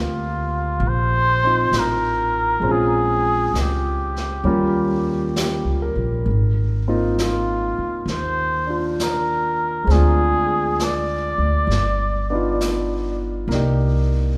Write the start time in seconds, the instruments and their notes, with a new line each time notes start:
Already playing: upright bass D2, grand piano A#3 C4 F4 G4, muted trumpet F4
0.80 upright bass A#1, brush sweep
0.88 muted trumpet C5
1.44 grand piano C4 D#4 F4
1.72 upright bass A1, snare, hi-hat pedal
1.79 muted trumpet A#4
2.60 upright bass A#1, grand piano G#3 C4, brush sweep
2.67 grand piano C#4 F4
2.72 muted trumpet G#4
3.54 upright bass C#2, snare, hi-hat pedal
3.61 muted trumpet G4
4.16 snare
4.44 upright bass D#2, grand piano G3 A#3 C#4 F4, brush sweep
5.36 grand piano G4, snare, hi-hat pedal
5.64 upright bass C#2
5.82 grand piano A#4
5.96 upright bass A#1
6.26 upright bass G#1, brush sweep
6.88 grand piano A#3 C4 D#4 F4
7.18 snare, hi-hat pedal
7.22 muted trumpet F4
7.78 muted upright bass stroke
8.06 upright bass D#2, brush sweep, snare
8.11 muted trumpet C5
8.66 grand piano D4 F4
9.00 muted trumpet A#4, snare, hi-hat pedal
9.84 upright bass D2, grand piano G#3 C4
9.90 grand piano D4, muted trumpet G#4, brush sweep, snare
9.95 grand piano F4
10.79 muted trumpet D5, snare, hi-hat pedal
11.38 upright bass D2
11.67 upright bass G1, brush sweep, snare
12.30 grand piano B3 D4 D#4
12.35 grand piano F4
12.61 snare, hi-hat pedal
13.48 upright bass C2, grand piano A#3, brush sweep, snare
13.52 grand piano D#4 G4 D5